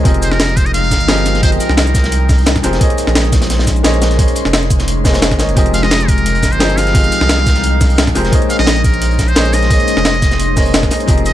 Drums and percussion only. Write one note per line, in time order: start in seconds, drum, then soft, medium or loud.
0.05 kick loud
0.05 closed hi-hat medium
0.14 closed hi-hat soft
0.22 closed hi-hat medium
0.22 cabasa medium
0.32 snare medium
0.40 snare loud
0.40 closed hi-hat medium
0.49 cabasa soft
0.57 kick loud
0.57 closed hi-hat medium
0.57 cabasa medium
0.66 closed hi-hat soft
0.74 closed hi-hat medium
0.84 closed hi-hat soft
0.91 kick medium
0.91 snare soft
0.91 closed hi-hat medium
0.91 cabasa medium
1.00 cabasa soft
1.09 snare loud
1.09 closed hi-hat medium
1.09 cabasa soft
1.18 closed hi-hat soft
1.25 snare soft
1.25 closed hi-hat medium
1.25 cabasa medium
1.35 snare soft
1.35 closed hi-hat soft
1.43 kick loud
1.43 closed hi-hat medium
1.52 closed hi-hat soft
1.60 closed hi-hat medium
1.60 cabasa medium
1.69 snare medium
1.77 snare loud
1.77 closed hi-hat medium
1.87 cabasa soft
1.95 kick loud
1.95 snare medium
1.95 closed hi-hat medium
1.95 cabasa medium
2.04 snare medium
2.04 closed hi-hat soft
2.12 closed hi-hat medium
2.29 kick loud
2.29 snare soft
2.29 closed hi-hat medium
2.29 open hi-hat medium
2.29 cabasa medium
2.38 cabasa soft
2.46 snare loud
2.46 closed hi-hat medium
2.46 cabasa soft
2.56 kick medium
2.56 snare soft
2.56 closed hi-hat soft
2.63 snare soft
2.63 closed hi-hat medium
2.63 cabasa medium
2.73 snare medium
2.73 closed hi-hat soft
2.81 kick loud
2.81 closed hi-hat medium
2.90 closed hi-hat soft
2.98 closed hi-hat medium
2.98 cabasa medium
3.07 snare medium
3.15 snare loud
3.15 closed hi-hat loud
3.15 closed hi-hat medium
3.25 cabasa soft
3.32 kick loud
3.32 snare loud
3.32 closed hi-hat medium
3.32 cabasa medium
3.42 snare loud
3.42 closed hi-hat soft
3.42 closed hi-hat medium
3.50 snare loud
3.50 closed hi-hat medium
3.59 snare loud
3.59 closed hi-hat medium
3.67 kick medium
3.67 snare soft
3.67 closed hi-hat medium
3.67 cabasa medium
3.76 cabasa soft
3.84 snare loud
3.84 closed hi-hat loud
3.84 closed hi-hat medium
3.84 cabasa soft
3.94 closed hi-hat soft
4.02 snare loud
4.02 snare soft
4.02 closed hi-hat medium
4.02 cabasa medium
4.11 snare soft
4.11 closed hi-hat soft
4.19 kick loud
4.19 closed hi-hat medium
4.19 closed hi-hat loud
4.28 closed hi-hat soft
4.36 closed hi-hat medium
4.36 cabasa medium
4.45 snare medium
4.53 snare loud
4.53 closed hi-hat medium
4.62 cabasa soft
4.70 kick loud
4.70 closed hi-hat medium
4.70 cabasa medium
4.79 snare medium
4.79 closed hi-hat soft
4.88 closed hi-hat medium
5.05 kick loud
5.05 snare soft
5.05 snare loud
5.05 closed hi-hat medium
5.05 cabasa medium
5.14 snare loud
5.14 closed hi-hat medium
5.14 cabasa soft
5.22 snare loud
5.22 closed hi-hat medium
5.22 closed hi-hat loud
5.22 cabasa soft
5.31 kick medium
5.31 snare soft
5.31 closed hi-hat soft
5.39 snare loud
5.39 snare soft
5.39 closed hi-hat medium
5.39 cabasa medium
5.49 closed hi-hat soft
5.56 kick loud
5.56 closed hi-hat medium
5.66 closed hi-hat soft
5.74 closed hi-hat medium
5.74 cabasa medium
5.83 snare medium
5.91 snare loud
5.91 closed hi-hat medium
6.00 cabasa soft
6.08 kick loud
6.08 closed hi-hat medium
6.08 cabasa medium
6.18 closed hi-hat soft
6.26 closed hi-hat medium
6.35 closed hi-hat soft
6.42 kick medium
6.42 snare soft
6.42 closed hi-hat medium
6.42 cabasa medium
6.52 cabasa soft
6.60 snare loud
6.60 closed hi-hat medium
6.60 cabasa soft
6.70 closed hi-hat soft
6.78 snare soft
6.78 closed hi-hat medium
6.78 open hi-hat medium
6.78 cabasa medium
6.87 snare soft
6.87 closed hi-hat soft
6.95 kick loud
6.95 closed hi-hat loud
6.95 closed hi-hat medium
7.04 closed hi-hat soft
7.12 closed hi-hat medium
7.12 cabasa medium
7.21 snare medium
7.29 snare loud
7.29 closed hi-hat medium
7.29 closed hi-hat loud
7.38 cabasa soft
7.46 kick loud
7.46 snare medium
7.46 closed hi-hat medium
7.46 cabasa medium
7.56 snare soft
7.56 closed hi-hat soft
7.63 closed hi-hat medium
7.81 kick loud
7.81 snare soft
7.81 closed hi-hat medium
7.81 open hi-hat medium
7.81 cabasa medium
7.90 cabasa soft
7.98 snare loud
7.98 closed hi-hat medium
7.98 cabasa soft
8.07 kick medium
8.07 snare soft
8.07 closed hi-hat soft
8.15 snare soft
8.15 closed hi-hat medium
8.15 open hi-hat medium
8.15 cabasa medium
8.24 snare medium
8.24 closed hi-hat soft
8.32 kick loud
8.32 closed hi-hat medium
8.42 closed hi-hat soft
8.50 closed hi-hat medium
8.50 cabasa medium
8.59 snare medium
8.67 snare loud
8.67 closed hi-hat medium
8.67 closed hi-hat loud
8.76 cabasa soft
8.84 kick loud
8.84 closed hi-hat medium
8.84 cabasa medium
8.94 closed hi-hat soft
9.02 closed hi-hat medium
9.11 closed hi-hat soft
9.19 kick medium
9.19 snare soft
9.19 closed hi-hat medium
9.19 cabasa medium
9.28 cabasa soft
9.36 snare loud
9.36 closed hi-hat medium
9.36 cabasa soft
9.45 closed hi-hat soft
9.52 snare soft
9.52 closed hi-hat medium
9.52 open hi-hat medium
9.52 cabasa medium
9.63 snare soft
9.63 closed hi-hat soft
9.70 kick loud
9.70 closed hi-hat medium
9.80 closed hi-hat soft
9.87 closed hi-hat medium
9.87 cabasa medium
9.97 snare medium
10.05 snare loud
10.05 closed hi-hat medium
10.14 cabasa soft
10.22 kick loud
10.22 snare medium
10.22 closed hi-hat medium
10.22 cabasa medium
10.31 snare medium
10.31 closed hi-hat soft
10.40 closed hi-hat medium
10.57 kick loud
10.57 snare soft
10.57 closed hi-hat medium
10.57 open hi-hat medium
10.57 cabasa medium
10.66 cabasa soft
10.74 snare loud
10.74 closed hi-hat medium
10.74 cabasa soft
10.83 kick medium
10.83 snare soft
10.83 closed hi-hat soft
10.91 snare soft
10.91 closed hi-hat medium
10.91 open hi-hat medium
10.91 cabasa medium
11.00 closed hi-hat soft
11.08 kick loud
11.08 closed hi-hat medium
11.18 closed hi-hat soft
11.26 closed hi-hat medium
11.26 cabasa medium